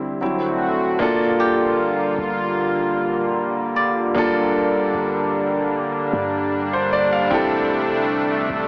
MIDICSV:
0, 0, Header, 1, 5, 480
1, 0, Start_track
1, 0, Tempo, 789474
1, 606, Time_signature, 4, 2, 24, 8
1, 5277, End_track
2, 0, Start_track
2, 0, Title_t, "Kora"
2, 0, Program_c, 0, 46
2, 850, Note_on_c, 0, 67, 73
2, 2287, Note_on_c, 0, 74, 60
2, 2605, Note_off_c, 0, 67, 0
2, 4044, Note_off_c, 0, 74, 0
2, 5277, End_track
3, 0, Start_track
3, 0, Title_t, "Grand piano"
3, 0, Program_c, 1, 0
3, 0, Control_c, 1, 64, 127
3, 0, Note_on_c, 1, 55, 53
3, 0, Note_on_c, 1, 60, 49
3, 0, Note_on_c, 1, 64, 59
3, 102, Note_off_c, 1, 55, 0
3, 104, Note_off_c, 1, 60, 0
3, 106, Note_off_c, 1, 64, 0
3, 128, Note_on_c, 1, 54, 56
3, 132, Note_on_c, 1, 60, 50
3, 135, Control_c, 1, 64, 0
3, 136, Note_on_c, 1, 64, 63
3, 222, Control_c, 1, 64, 127
3, 583, Note_off_c, 1, 54, 0
3, 585, Note_off_c, 1, 60, 0
3, 587, Note_off_c, 1, 64, 0
3, 601, Note_on_c, 1, 58, 85
3, 607, Note_on_c, 1, 62, 75
3, 614, Control_c, 1, 64, 0
3, 615, Note_on_c, 1, 65, 75
3, 622, Note_on_c, 1, 69, 91
3, 724, Control_c, 1, 64, 127
3, 2499, Note_off_c, 1, 58, 0
3, 2502, Note_off_c, 1, 62, 0
3, 2506, Note_off_c, 1, 65, 0
3, 2509, Note_off_c, 1, 69, 0
3, 2521, Note_on_c, 1, 58, 83
3, 2528, Note_on_c, 1, 62, 76
3, 2535, Note_on_c, 1, 65, 77
3, 2541, Note_on_c, 1, 69, 94
3, 4093, Note_on_c, 1, 72, 70
3, 4203, Note_off_c, 1, 72, 0
3, 4212, Note_on_c, 1, 74, 79
3, 4323, Note_off_c, 1, 74, 0
3, 4332, Note_on_c, 1, 77, 69
3, 4419, Note_off_c, 1, 58, 0
3, 4422, Note_off_c, 1, 62, 0
3, 4426, Note_off_c, 1, 65, 0
3, 4429, Note_off_c, 1, 69, 0
3, 4442, Note_on_c, 1, 60, 86
3, 4448, Note_on_c, 1, 64, 76
3, 4454, Control_c, 1, 64, 0
3, 4454, Note_on_c, 1, 67, 80
3, 4461, Note_on_c, 1, 69, 91
3, 4557, Note_off_c, 1, 77, 0
3, 4563, Control_c, 1, 64, 127
3, 5277, Note_off_c, 1, 60, 0
3, 5277, Note_off_c, 1, 64, 0
3, 5277, Note_off_c, 1, 67, 0
3, 5277, Note_off_c, 1, 69, 0
3, 5277, End_track
4, 0, Start_track
4, 0, Title_t, "Analog synth pad"
4, 0, Program_c, 2, 89
4, 0, Note_on_c, 2, 50, 82
4, 0, Note_on_c, 2, 55, 74
4, 0, Note_on_c, 2, 60, 75
4, 0, Note_on_c, 2, 64, 84
4, 111, Note_off_c, 2, 55, 0
4, 111, Note_off_c, 2, 60, 0
4, 112, Note_off_c, 2, 50, 0
4, 112, Note_off_c, 2, 64, 0
4, 125, Note_on_c, 2, 66, 79
4, 126, Note_on_c, 2, 50, 68
4, 126, Note_on_c, 2, 57, 64
4, 126, Note_on_c, 2, 60, 66
4, 598, Note_off_c, 2, 50, 0
4, 601, Note_off_c, 2, 57, 0
4, 601, Note_off_c, 2, 60, 0
4, 601, Note_off_c, 2, 66, 0
4, 604, Note_on_c, 2, 58, 74
4, 604, Note_on_c, 2, 65, 92
4, 605, Note_on_c, 2, 50, 83
4, 606, Note_on_c, 2, 55, 78
4, 2506, Note_off_c, 2, 65, 0
4, 2527, Note_on_c, 2, 62, 91
4, 4420, Note_off_c, 2, 58, 0
4, 4421, Note_off_c, 2, 50, 0
4, 4443, Note_on_c, 2, 57, 77
4, 4444, Note_on_c, 2, 48, 83
4, 5277, Note_off_c, 2, 48, 0
4, 5277, Note_off_c, 2, 55, 0
4, 5277, Note_off_c, 2, 57, 0
4, 5277, Note_off_c, 2, 62, 0
4, 5277, End_track
5, 0, Start_track
5, 0, Title_t, "808-style bass"
5, 0, Program_c, 3, 38
5, 608, Note_on_c, 3, 31, 112
5, 1303, Note_off_c, 3, 31, 0
5, 1328, Note_on_c, 3, 31, 107
5, 2503, Note_off_c, 3, 31, 0
5, 2529, Note_on_c, 3, 31, 113
5, 2988, Note_off_c, 3, 31, 0
5, 3009, Note_on_c, 3, 31, 107
5, 3703, Note_off_c, 3, 31, 0
5, 3729, Note_on_c, 3, 43, 110
5, 4423, Note_off_c, 3, 43, 0
5, 4448, Note_on_c, 3, 33, 113
5, 5142, Note_off_c, 3, 33, 0
5, 5167, Note_on_c, 3, 33, 110
5, 5277, Note_off_c, 3, 33, 0
5, 5277, End_track
0, 0, End_of_file